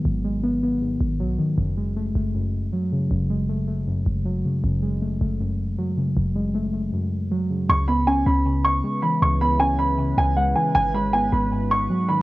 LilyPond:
<<
  \new Staff \with { instrumentName = "Grand piano" } { \time 4/4 \key cis \minor \tempo 4 = 157 r1 | r1 | r1 | r1 |
r1 | cis'''8 b''8 gis''8 b''4 cis'''4 b''8 | cis'''8 b''8 gis''8 b''4 gis''8 fis''8 gis''8 | gis''8 b''8 gis''8 b''4 cis'''4 b''8 | }
  \new Staff \with { instrumentName = "Ambient pad" } { \time 4/4 \key cis \minor << { r1 | r1 | r1 | r1 |
r1 | b'1~ | b'1~ | b'1 | } \\ { r1 | r1 | r1 | r1 |
r1 | <cis cis' e'>1~ | <cis cis' e'>1 | <gis dis' fis'>1 | } >> }
  \new Staff \with { instrumentName = "Synth keys" } { \clef bass \time 4/4 \key cis \minor <gis, dis fis>8 gis8 b8 b8 gis,4 fis8 dis8 | fis,8 gis8 a8 a8 fis,4 fis8 cis8 | fis,8 gis8 a8 a8 fis,4 fis8 cis8 | fis,8 gis8 a8 a8 fis,4 fis8 cis8 |
fis,8 gis8 a8 a8 fis,4 fis8 cis8 | cis8 b8 cis'8 cis'8 cis4 gis8 e8 | cis8 b8 cis'8 cis'8 cis4 gis8 e8 | gis,8 gis8 b8 b8 gis,4 fis8 dis8 | }
  \new Staff \with { instrumentName = "808-style bass" } { \clef bass \time 4/4 \key cis \minor gis,,2~ gis,,8 gis,,8 b,,8 r8 | fis,,4. fis,,4. r4 | fis,,2~ fis,,8 fis,,4 r8 | fis,,4. fis,,4. r4 |
fis,,2 r2 | cis,4. cis,4. r4 | cis,2~ cis,8 cis,4 r8 | gis,,4. gis,,4. r4 | }
>>